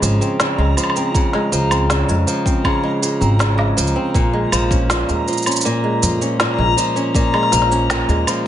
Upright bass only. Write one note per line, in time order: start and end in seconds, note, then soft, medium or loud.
0.02 0.17 G#1 medium
0.58 0.73 C#2 medium
1.52 2.01 C#2 medium
2.08 2.23 F2 medium
3.21 3.70 G#1 medium
3.78 3.92 C#2 medium
4.15 4.43 A#1 medium
4.52 5.02 A#1 medium
5.09 5.23 D#2 medium
6.03 6.17 F2 medium
6.58 6.73 A#1 medium
7.52 8.02 A#1 medium
8.08 8.23 D#2 medium